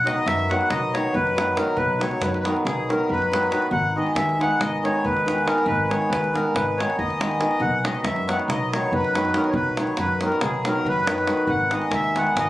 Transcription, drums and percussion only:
0.07 davul high medium
0.28 davul high medium
0.39 davul high soft
0.51 davul high soft
0.61 davul high soft
0.70 davul high medium
0.95 davul high medium
1.15 davul low medium
1.27 davul high soft
1.38 davul high medium
1.48 davul high soft
1.57 davul high medium
1.68 davul high soft
1.77 davul low medium
2.01 davul high medium
2.11 davul high soft
2.22 davul high medium
2.34 davul high soft
2.45 davul high medium
2.56 davul high soft
2.67 davul high medium
2.90 davul high medium
3.10 davul low medium
3.22 davul high soft
3.33 davul high medium
3.43 davul high soft
3.52 davul high medium
3.62 davul high soft
3.72 davul low medium
4.07 davul high soft
4.16 davul high medium
4.29 davul high soft
4.41 davul high soft
4.51 davul high soft
4.61 davul high medium
4.85 davul high medium
5.05 davul low medium
5.17 davul high soft
5.28 davul high medium
5.38 davul high soft
5.48 davul high medium
5.58 davul high soft
5.68 davul low medium
5.91 davul high medium
6.02 davul high soft
6.13 davul high medium
6.24 davul high soft
6.36 davul high medium
6.56 davul high medium
6.80 davul high medium
6.90 davul high soft
6.99 davul low medium
7.10 davul high soft
7.21 davul high medium
7.31 davul high soft
7.41 davul high medium
7.51 davul high soft
7.61 davul low medium
7.85 davul high medium
7.95 davul high soft
8.05 davul high medium
8.16 davul high soft
8.29 davul high medium
8.39 davul high soft
8.50 davul high medium
8.73 davul high medium
8.92 davul low medium
9.04 davul high soft
9.15 davul high medium
9.25 davul high soft
9.34 davul high medium
9.44 davul high soft
9.53 davul low medium
9.77 davul high medium
9.87 davul high soft
9.97 davul high medium
10.21 davul high medium
10.32 davul high soft
10.41 davul high medium
10.65 davul high medium
10.85 davul low medium
11.07 davul high medium
11.18 davul high soft
11.27 davul high medium
11.37 davul high soft
11.47 davul low medium
11.71 davul high medium
11.82 davul high soft
11.92 davul high medium
12.04 davul high soft
12.16 davul high medium
12.27 davul high soft
12.37 davul high medium

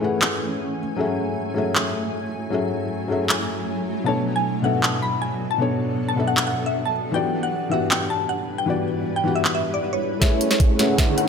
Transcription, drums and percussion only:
0.22 clap medium
1.75 clap medium
3.29 clap medium
4.83 clap medium
6.37 clap medium
7.91 clap medium
9.45 clap medium
10.22 kick medium
10.22 snare soft
10.22 closed hi-hat medium
10.41 closed hi-hat medium
10.51 snare soft
10.60 kick medium
10.60 closed hi-hat medium
10.79 snare soft
10.79 closed hi-hat medium
10.98 kick medium
10.98 snare soft
10.98 closed hi-hat medium
11.18 closed hi-hat medium

